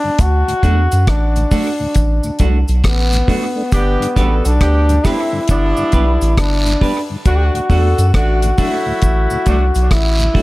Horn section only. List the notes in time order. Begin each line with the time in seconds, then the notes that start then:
3.73 B3 D4 G4
4.17 D4 F#4 A4
4.61 B3 D4 G4
5.05 A3 C4 E4
5.49 G3 B3 D4
7.26 A3 D4 F#4
7.70 D4 F#4 A4
8.15 A3 D4 F#4
8.59 F#3 A3 E4
9.47 F#3 A3 D4